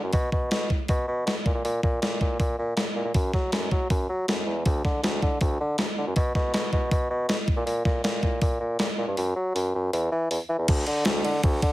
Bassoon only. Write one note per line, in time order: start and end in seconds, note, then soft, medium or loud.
0.04 0.12 F#2 medium
0.13 0.29 B2 loud
0.32 0.48 B2 medium
0.51 0.67 B2 medium
0.89 1.05 B2 loud
1.08 1.24 B2 medium
1.26 1.34 B2 medium
1.46 1.54 A#2 medium
1.55 1.63 A#2 medium
1.65 1.81 A#2 loud
1.83 1.99 A#2 medium
2.02 2.18 A#2 medium
2.21 2.37 A#2 medium
2.40 2.56 A#2 loud
2.58 2.75 A#2 medium
2.77 2.85 A#2 medium
2.95 3.04 A#2 medium
3.05 3.13 A#2 medium
3.15 3.31 F#2 medium
3.34 3.50 F#3 medium
3.52 3.68 F#2 loud
3.71 3.87 F#3 medium
3.90 4.06 F#2 loud
4.09 4.25 F#3 medium
4.28 4.45 F#2 medium
4.46 4.63 E2 medium
4.66 4.82 D2 medium
4.85 5.01 D3 medium
5.03 5.19 D2 loud
5.23 5.38 D3 medium
5.41 5.57 D2 loud
5.61 5.76 D3 medium
5.79 5.87 D2 medium
5.98 6.06 D3 medium
6.07 6.15 F#2 medium
6.17 6.33 B2 loud
6.35 6.51 B2 medium
6.54 6.70 B2 loud
6.73 6.89 B2 medium
6.91 7.08 B2 loud
7.10 7.26 B2 medium
7.28 7.37 B2 medium
7.57 7.65 A#2 medium
7.66 7.82 A#2 loud
7.85 8.02 A#2 medium
8.04 8.20 A#2 loud
8.23 8.39 A#2 medium
8.42 8.58 A#2 medium
8.60 8.77 A#2 medium
8.79 8.88 A#2 medium
8.98 9.06 A#2 medium
9.08 9.16 G2 medium
9.17 9.34 F#2 loud
9.36 9.52 F#3 medium
9.55 9.71 F#2 loud
9.75 9.91 F#2 medium
9.93 10.09 E2 loud
10.12 10.28 E3 medium
10.31 10.39 E2 medium
10.49 10.58 E3 medium
10.58 10.67 E2 medium
10.69 10.85 D2 medium
10.87 11.03 D3 medium
11.06 11.22 D2 loud
11.24 11.41 D3 loud
11.44 11.60 D2 loud
11.63 11.72 D3 loud